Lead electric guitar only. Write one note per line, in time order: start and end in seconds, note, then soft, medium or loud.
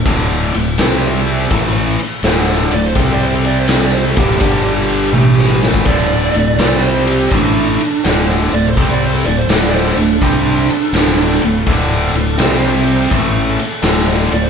2.72 2.86 D5 medium
2.86 2.95 C5 medium
2.97 3.12 A4 medium
3.12 3.22 D5 medium
3.22 3.34 C5 medium
3.34 3.39 A4 medium
3.46 3.61 D5 medium
3.59 3.67 C5 medium
3.68 3.84 A4 medium
3.80 3.90 D5 medium
3.92 4.05 C5 medium
4.05 4.10 A4 medium
4.17 5.58 G4 medium
5.87 6.57 D5 medium
6.60 6.83 D5 medium
6.84 7.07 C5 medium
7.06 7.30 G4 medium
7.32 8.02 D4 medium
8.53 8.69 D5 medium
8.66 8.76 C5 medium
8.76 8.92 A4 medium
8.91 9.00 D5 medium
9.04 9.14 C5 loud
9.14 9.19 A4 medium
9.25 9.38 D5 medium
9.38 9.47 C5 medium
9.51 9.66 A4 medium
9.62 9.73 D5 medium
9.73 9.97 C5 medium
9.87 9.92 A4 medium
9.97 11.39 D4 medium
14.33 14.43 D5 loud
14.43 14.50 C5 medium